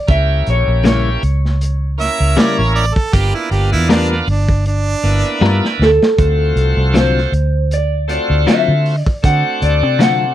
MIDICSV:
0, 0, Header, 1, 7, 480
1, 0, Start_track
1, 0, Tempo, 763359
1, 50, Time_signature, 4, 2, 24, 8
1, 6504, End_track
2, 0, Start_track
2, 0, Title_t, "Clean electric guitar"
2, 0, Program_c, 0, 27
2, 0, Note_on_c, 0, 74, 85
2, 63, Note_off_c, 0, 74, 0
2, 66, Note_on_c, 0, 76, 95
2, 304, Note_off_c, 0, 76, 0
2, 314, Note_on_c, 0, 73, 84
2, 540, Note_off_c, 0, 73, 0
2, 548, Note_on_c, 0, 73, 81
2, 1473, Note_off_c, 0, 73, 0
2, 3665, Note_on_c, 0, 69, 79
2, 4384, Note_off_c, 0, 69, 0
2, 4387, Note_on_c, 0, 72, 84
2, 4865, Note_on_c, 0, 74, 103
2, 4871, Note_off_c, 0, 72, 0
2, 5091, Note_off_c, 0, 74, 0
2, 5098, Note_on_c, 0, 74, 94
2, 5332, Note_off_c, 0, 74, 0
2, 5335, Note_on_c, 0, 76, 95
2, 5668, Note_off_c, 0, 76, 0
2, 5668, Note_on_c, 0, 74, 95
2, 5786, Note_off_c, 0, 74, 0
2, 5818, Note_on_c, 0, 78, 96
2, 6051, Note_off_c, 0, 78, 0
2, 6053, Note_on_c, 0, 74, 93
2, 6296, Note_off_c, 0, 74, 0
2, 6299, Note_on_c, 0, 78, 99
2, 6504, Note_off_c, 0, 78, 0
2, 6504, End_track
3, 0, Start_track
3, 0, Title_t, "Harmonica"
3, 0, Program_c, 1, 22
3, 1258, Note_on_c, 1, 76, 101
3, 1500, Note_on_c, 1, 74, 85
3, 1509, Note_off_c, 1, 76, 0
3, 1627, Note_on_c, 1, 73, 78
3, 1636, Note_off_c, 1, 74, 0
3, 1724, Note_off_c, 1, 73, 0
3, 1730, Note_on_c, 1, 74, 81
3, 1854, Note_on_c, 1, 69, 81
3, 1864, Note_off_c, 1, 74, 0
3, 1971, Note_on_c, 1, 67, 86
3, 1980, Note_off_c, 1, 69, 0
3, 2106, Note_on_c, 1, 64, 76
3, 2115, Note_off_c, 1, 67, 0
3, 2204, Note_off_c, 1, 64, 0
3, 2206, Note_on_c, 1, 67, 77
3, 2329, Note_off_c, 1, 67, 0
3, 2340, Note_on_c, 1, 64, 81
3, 2450, Note_on_c, 1, 62, 83
3, 2459, Note_off_c, 1, 64, 0
3, 2571, Note_off_c, 1, 62, 0
3, 2698, Note_on_c, 1, 62, 71
3, 2925, Note_off_c, 1, 62, 0
3, 2938, Note_on_c, 1, 62, 89
3, 3526, Note_off_c, 1, 62, 0
3, 6504, End_track
4, 0, Start_track
4, 0, Title_t, "Tonewheel organ"
4, 0, Program_c, 2, 16
4, 47, Note_on_c, 2, 58, 70
4, 50, Note_on_c, 2, 61, 67
4, 51, Note_on_c, 2, 64, 65
4, 55, Note_on_c, 2, 67, 75
4, 772, Note_off_c, 2, 58, 0
4, 774, Note_off_c, 2, 61, 0
4, 775, Note_off_c, 2, 64, 0
4, 776, Note_off_c, 2, 67, 0
4, 1244, Note_on_c, 2, 58, 85
4, 1245, Note_on_c, 2, 61, 78
4, 1247, Note_on_c, 2, 64, 75
4, 1251, Note_on_c, 2, 70, 94
4, 1795, Note_off_c, 2, 58, 0
4, 1796, Note_off_c, 2, 61, 0
4, 1797, Note_off_c, 2, 64, 0
4, 1798, Note_off_c, 2, 70, 0
4, 1966, Note_on_c, 2, 58, 82
4, 1969, Note_on_c, 2, 59, 73
4, 1972, Note_on_c, 2, 62, 77
4, 1975, Note_on_c, 2, 65, 91
4, 2691, Note_off_c, 2, 58, 0
4, 2693, Note_off_c, 2, 59, 0
4, 2694, Note_off_c, 2, 62, 0
4, 2696, Note_off_c, 2, 65, 0
4, 3165, Note_on_c, 2, 58, 83
4, 3169, Note_on_c, 2, 59, 77
4, 3169, Note_on_c, 2, 62, 80
4, 3175, Note_on_c, 2, 64, 85
4, 3715, Note_off_c, 2, 58, 0
4, 3717, Note_off_c, 2, 59, 0
4, 3718, Note_off_c, 2, 62, 0
4, 3720, Note_off_c, 2, 64, 0
4, 3886, Note_on_c, 2, 57, 69
4, 3888, Note_on_c, 2, 60, 61
4, 3890, Note_on_c, 2, 65, 60
4, 3895, Note_on_c, 2, 66, 74
4, 4611, Note_off_c, 2, 57, 0
4, 4612, Note_off_c, 2, 60, 0
4, 4613, Note_off_c, 2, 65, 0
4, 4616, Note_off_c, 2, 66, 0
4, 5080, Note_on_c, 2, 57, 74
4, 5084, Note_on_c, 2, 60, 65
4, 5087, Note_on_c, 2, 65, 63
4, 5089, Note_on_c, 2, 66, 76
4, 5633, Note_off_c, 2, 57, 0
4, 5635, Note_off_c, 2, 60, 0
4, 5636, Note_off_c, 2, 65, 0
4, 5638, Note_off_c, 2, 66, 0
4, 5801, Note_on_c, 2, 57, 72
4, 5805, Note_on_c, 2, 60, 62
4, 5808, Note_on_c, 2, 62, 61
4, 5811, Note_on_c, 2, 66, 79
4, 6504, Note_off_c, 2, 57, 0
4, 6504, Note_off_c, 2, 60, 0
4, 6504, Note_off_c, 2, 62, 0
4, 6504, Note_off_c, 2, 66, 0
4, 6504, End_track
5, 0, Start_track
5, 0, Title_t, "Clean electric guitar"
5, 0, Program_c, 3, 27
5, 527, Note_on_c, 3, 49, 75
5, 532, Note_on_c, 3, 55, 76
5, 535, Note_on_c, 3, 58, 85
5, 537, Note_on_c, 3, 64, 85
5, 681, Note_off_c, 3, 49, 0
5, 683, Note_off_c, 3, 55, 0
5, 685, Note_off_c, 3, 58, 0
5, 686, Note_off_c, 3, 64, 0
5, 1488, Note_on_c, 3, 49, 79
5, 1490, Note_on_c, 3, 55, 85
5, 1495, Note_on_c, 3, 58, 96
5, 1496, Note_on_c, 3, 64, 91
5, 1641, Note_off_c, 3, 49, 0
5, 1642, Note_off_c, 3, 55, 0
5, 1645, Note_off_c, 3, 58, 0
5, 1645, Note_off_c, 3, 64, 0
5, 2448, Note_on_c, 3, 55, 72
5, 2451, Note_on_c, 3, 59, 87
5, 2452, Note_on_c, 3, 65, 81
5, 2457, Note_on_c, 3, 70, 88
5, 2601, Note_off_c, 3, 55, 0
5, 2603, Note_off_c, 3, 59, 0
5, 2603, Note_off_c, 3, 65, 0
5, 2605, Note_off_c, 3, 70, 0
5, 3405, Note_on_c, 3, 55, 85
5, 3409, Note_on_c, 3, 59, 86
5, 3409, Note_on_c, 3, 65, 87
5, 3413, Note_on_c, 3, 70, 91
5, 3559, Note_off_c, 3, 55, 0
5, 3561, Note_off_c, 3, 59, 0
5, 3561, Note_off_c, 3, 65, 0
5, 3563, Note_off_c, 3, 70, 0
5, 4363, Note_on_c, 3, 50, 66
5, 4367, Note_on_c, 3, 54, 72
5, 4372, Note_on_c, 3, 60, 75
5, 4372, Note_on_c, 3, 65, 73
5, 4518, Note_off_c, 3, 50, 0
5, 4520, Note_off_c, 3, 54, 0
5, 4523, Note_off_c, 3, 60, 0
5, 4523, Note_off_c, 3, 65, 0
5, 5325, Note_on_c, 3, 50, 69
5, 5328, Note_on_c, 3, 54, 79
5, 5331, Note_on_c, 3, 60, 76
5, 5333, Note_on_c, 3, 65, 83
5, 5479, Note_off_c, 3, 50, 0
5, 5481, Note_off_c, 3, 54, 0
5, 5482, Note_off_c, 3, 60, 0
5, 5483, Note_off_c, 3, 65, 0
5, 6282, Note_on_c, 3, 50, 73
5, 6287, Note_on_c, 3, 54, 82
5, 6290, Note_on_c, 3, 60, 72
5, 6292, Note_on_c, 3, 65, 82
5, 6438, Note_off_c, 3, 50, 0
5, 6440, Note_off_c, 3, 54, 0
5, 6442, Note_off_c, 3, 60, 0
5, 6443, Note_off_c, 3, 65, 0
5, 6504, End_track
6, 0, Start_track
6, 0, Title_t, "Fingered electric bass"
6, 0, Program_c, 4, 33
6, 52, Note_on_c, 4, 37, 89
6, 260, Note_off_c, 4, 37, 0
6, 298, Note_on_c, 4, 34, 84
6, 409, Note_off_c, 4, 34, 0
6, 425, Note_on_c, 4, 34, 92
6, 726, Note_off_c, 4, 34, 0
6, 773, Note_on_c, 4, 37, 94
6, 1304, Note_off_c, 4, 37, 0
6, 1385, Note_on_c, 4, 37, 90
6, 1477, Note_off_c, 4, 37, 0
6, 1626, Note_on_c, 4, 33, 81
6, 1832, Note_off_c, 4, 33, 0
6, 1970, Note_on_c, 4, 31, 98
6, 2084, Note_off_c, 4, 31, 0
6, 2208, Note_on_c, 4, 31, 85
6, 2342, Note_on_c, 4, 40, 78
6, 2351, Note_off_c, 4, 31, 0
6, 2644, Note_off_c, 4, 40, 0
6, 2688, Note_on_c, 4, 31, 92
6, 3106, Note_off_c, 4, 31, 0
6, 3166, Note_on_c, 4, 31, 86
6, 3281, Note_off_c, 4, 31, 0
6, 3404, Note_on_c, 4, 43, 99
6, 3520, Note_off_c, 4, 43, 0
6, 3644, Note_on_c, 4, 38, 85
6, 3760, Note_off_c, 4, 38, 0
6, 3889, Note_on_c, 4, 38, 91
6, 4097, Note_off_c, 4, 38, 0
6, 4122, Note_on_c, 4, 36, 83
6, 4239, Note_off_c, 4, 36, 0
6, 4256, Note_on_c, 4, 36, 93
6, 4561, Note_off_c, 4, 36, 0
6, 4604, Note_on_c, 4, 38, 89
6, 5138, Note_off_c, 4, 38, 0
6, 5218, Note_on_c, 4, 38, 86
6, 5313, Note_off_c, 4, 38, 0
6, 5459, Note_on_c, 4, 50, 78
6, 5668, Note_off_c, 4, 50, 0
6, 5809, Note_on_c, 4, 50, 104
6, 5923, Note_off_c, 4, 50, 0
6, 6049, Note_on_c, 4, 38, 82
6, 6181, Note_off_c, 4, 38, 0
6, 6181, Note_on_c, 4, 48, 84
6, 6484, Note_off_c, 4, 48, 0
6, 6504, End_track
7, 0, Start_track
7, 0, Title_t, "Drums"
7, 51, Note_on_c, 9, 42, 75
7, 53, Note_on_c, 9, 36, 107
7, 114, Note_off_c, 9, 42, 0
7, 116, Note_off_c, 9, 36, 0
7, 292, Note_on_c, 9, 42, 61
7, 355, Note_off_c, 9, 42, 0
7, 534, Note_on_c, 9, 42, 73
7, 543, Note_on_c, 9, 38, 111
7, 597, Note_off_c, 9, 42, 0
7, 606, Note_off_c, 9, 38, 0
7, 772, Note_on_c, 9, 42, 55
7, 835, Note_off_c, 9, 42, 0
7, 914, Note_on_c, 9, 38, 37
7, 977, Note_off_c, 9, 38, 0
7, 1013, Note_on_c, 9, 42, 80
7, 1076, Note_off_c, 9, 42, 0
7, 1254, Note_on_c, 9, 42, 58
7, 1263, Note_on_c, 9, 38, 31
7, 1317, Note_off_c, 9, 42, 0
7, 1326, Note_off_c, 9, 38, 0
7, 1493, Note_on_c, 9, 42, 80
7, 1502, Note_on_c, 9, 38, 115
7, 1556, Note_off_c, 9, 42, 0
7, 1565, Note_off_c, 9, 38, 0
7, 1732, Note_on_c, 9, 46, 73
7, 1794, Note_off_c, 9, 46, 0
7, 1862, Note_on_c, 9, 36, 85
7, 1925, Note_off_c, 9, 36, 0
7, 1969, Note_on_c, 9, 42, 86
7, 1971, Note_on_c, 9, 36, 108
7, 2032, Note_off_c, 9, 42, 0
7, 2033, Note_off_c, 9, 36, 0
7, 2210, Note_on_c, 9, 42, 66
7, 2273, Note_off_c, 9, 42, 0
7, 2452, Note_on_c, 9, 42, 88
7, 2461, Note_on_c, 9, 38, 98
7, 2515, Note_off_c, 9, 42, 0
7, 2524, Note_off_c, 9, 38, 0
7, 2590, Note_on_c, 9, 38, 36
7, 2653, Note_off_c, 9, 38, 0
7, 2688, Note_on_c, 9, 46, 69
7, 2751, Note_off_c, 9, 46, 0
7, 2820, Note_on_c, 9, 36, 84
7, 2883, Note_off_c, 9, 36, 0
7, 2927, Note_on_c, 9, 42, 85
7, 2990, Note_off_c, 9, 42, 0
7, 3170, Note_on_c, 9, 42, 62
7, 3233, Note_off_c, 9, 42, 0
7, 3420, Note_on_c, 9, 38, 59
7, 3483, Note_off_c, 9, 38, 0
7, 3553, Note_on_c, 9, 38, 63
7, 3616, Note_off_c, 9, 38, 0
7, 3660, Note_on_c, 9, 38, 81
7, 3723, Note_off_c, 9, 38, 0
7, 3789, Note_on_c, 9, 38, 86
7, 3852, Note_off_c, 9, 38, 0
7, 3888, Note_on_c, 9, 42, 79
7, 3889, Note_on_c, 9, 36, 105
7, 3951, Note_off_c, 9, 42, 0
7, 3952, Note_off_c, 9, 36, 0
7, 4129, Note_on_c, 9, 42, 57
7, 4192, Note_off_c, 9, 42, 0
7, 4369, Note_on_c, 9, 42, 77
7, 4379, Note_on_c, 9, 38, 96
7, 4432, Note_off_c, 9, 42, 0
7, 4441, Note_off_c, 9, 38, 0
7, 4513, Note_on_c, 9, 38, 35
7, 4576, Note_off_c, 9, 38, 0
7, 4611, Note_on_c, 9, 42, 56
7, 4674, Note_off_c, 9, 42, 0
7, 4849, Note_on_c, 9, 42, 78
7, 4912, Note_off_c, 9, 42, 0
7, 5089, Note_on_c, 9, 42, 57
7, 5151, Note_off_c, 9, 42, 0
7, 5332, Note_on_c, 9, 42, 81
7, 5341, Note_on_c, 9, 38, 106
7, 5395, Note_off_c, 9, 42, 0
7, 5404, Note_off_c, 9, 38, 0
7, 5569, Note_on_c, 9, 46, 77
7, 5632, Note_off_c, 9, 46, 0
7, 5700, Note_on_c, 9, 36, 86
7, 5763, Note_off_c, 9, 36, 0
7, 5809, Note_on_c, 9, 36, 103
7, 5810, Note_on_c, 9, 42, 88
7, 5872, Note_off_c, 9, 36, 0
7, 5873, Note_off_c, 9, 42, 0
7, 6049, Note_on_c, 9, 42, 62
7, 6112, Note_off_c, 9, 42, 0
7, 6289, Note_on_c, 9, 42, 76
7, 6298, Note_on_c, 9, 38, 101
7, 6352, Note_off_c, 9, 42, 0
7, 6361, Note_off_c, 9, 38, 0
7, 6504, End_track
0, 0, End_of_file